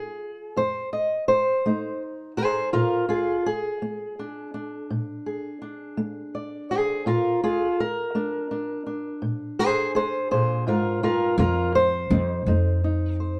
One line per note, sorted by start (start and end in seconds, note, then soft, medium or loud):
0.00 0.14 A3 medium
0.00 0.57 F4 soft
0.00 0.57 G#4 medium
0.56 1.22 F2 medium
0.56 0.92 C5 medium
0.93 1.28 D#5 medium
1.28 2.01 C5 loud
1.66 2.31 A3 medium
1.66 2.70 D#4 soft
2.37 2.73 G#4 medium
2.37 2.72 C5 medium
2.73 3.39 A#2 medium
2.73 3.07 F4 medium
2.73 3.09 A#4 medium
3.09 3.46 F4 medium
3.09 3.45 G#4 medium
3.46 4.91 G#4 loud
3.82 4.47 A#3 medium
4.19 4.54 D4 soft
4.54 5.60 D4 soft
4.90 5.56 A#2 medium
5.26 6.70 G#4 soft
5.62 7.02 D4 soft
5.97 6.63 A#3 medium
6.35 6.71 D5 medium
6.71 7.07 G#4 medium
6.71 7.06 C5 medium
7.06 7.71 A#2 medium
7.06 7.42 F4 medium
7.06 7.43 A#4 medium
7.44 7.79 F4 medium
7.44 7.80 G#4 medium
7.80 9.24 A#4 medium
8.15 8.80 A#3 medium
8.15 8.50 D4 soft
8.51 8.85 D4 soft
8.86 11.34 D4 soft
9.22 9.87 A#2 medium
9.59 9.94 G#4 medium
9.59 9.95 C5 medium
9.95 10.30 G#4 medium
9.95 10.30 C5 loud
10.31 10.67 A#2 medium
10.31 10.67 G#4 medium
10.31 10.67 C5 medium
10.67 11.02 G#2 medium
10.67 11.02 F4 medium
10.67 11.03 A#4 medium
11.03 11.39 G2 medium
11.03 11.38 F4 medium
11.03 11.38 A#4 medium
11.38 12.06 F2 loud
11.38 12.04 F2 medium
11.38 11.75 F4 medium
11.38 11.75 A#4 medium
11.75 13.19 C5 loud
12.10 12.43 F2 loud
12.10 12.48 D#4 soft
12.46 13.40 F2 medium
12.46 13.12 A3 medium
12.46 12.84 D#4 soft
12.84 13.40 D#4 soft
13.20 13.40 C5 soft